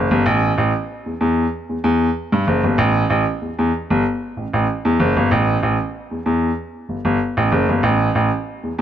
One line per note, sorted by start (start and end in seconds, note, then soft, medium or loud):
0.11 0.22 G1 medium
0.26 0.49 A1 loud
0.58 0.70 A1 medium
1.06 1.12 E2 soft
1.21 1.44 E2 medium
1.69 1.75 E2 soft
1.84 2.07 E2 medium
2.32 2.43 G2 medium
2.47 2.59 F#1 medium
2.64 2.75 G1 medium
2.78 3.02 A1 loud
3.10 3.22 A1 medium
3.41 3.48 E2 soft
3.59 3.69 E2 medium
3.90 4.01 G1 medium
4.37 4.43 A1 soft
4.53 4.64 A1 medium
4.85 4.96 E2 medium
5.00 5.12 F#1 medium
5.16 5.27 G1 medium
5.31 5.55 A1 medium
5.63 5.75 A1 medium
6.11 6.17 E2 soft
6.26 6.49 E2 medium
6.89 6.96 G1 soft
7.05 7.16 G1 medium
7.37 7.48 A1 medium
7.52 7.64 F#1 medium
7.69 7.80 G1 medium
7.83 8.07 A1 loud
8.15 8.28 A1 medium
8.63 8.69 E2 soft